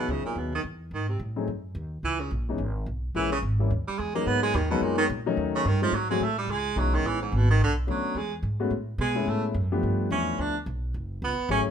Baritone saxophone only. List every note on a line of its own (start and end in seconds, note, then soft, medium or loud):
0.00 0.13 B2 medium
0.11 0.25 C#3 medium
0.26 0.39 A#2 medium
0.38 0.54 B2 medium
0.55 0.61 D#3 medium
0.94 1.08 D#3 medium
1.09 1.19 C3 medium
2.05 2.21 E3 loud
2.20 2.31 C#3 medium
3.16 3.31 E3 loud
3.32 3.38 C#3 medium
3.88 4.01 G3 loud
3.99 4.14 G#3 medium
4.15 4.28 A#3 loud
4.27 4.42 B3 loud
4.43 4.57 G#3 loud
4.55 4.70 D#3 medium
4.70 4.84 B2 medium
4.82 4.97 A#2 medium
4.98 5.05 D#3 loud
5.55 5.69 C#3 loud
5.67 5.82 D#3 medium
5.83 5.96 F3 loud
5.95 6.10 F#3 medium
6.10 6.25 G#3 loud
6.23 6.37 A3 loud
6.38 6.52 G3 loud
6.50 6.80 G#3 loud
6.78 6.96 F#3 medium
6.95 7.08 D#3 loud
7.07 7.21 E3 loud
7.22 7.37 G#2 medium
7.36 7.50 B2 medium
7.50 7.60 D#3 loud
7.64 7.73 D3 loud
7.90 8.19 F#3 medium
8.17 8.34 G#3 medium
9.01 9.30 G#3 medium
9.29 9.45 A3 medium
10.12 10.42 C#4 medium
10.40 10.57 D4 loud
11.24 11.49 B3 medium
11.51 11.61 C#4 medium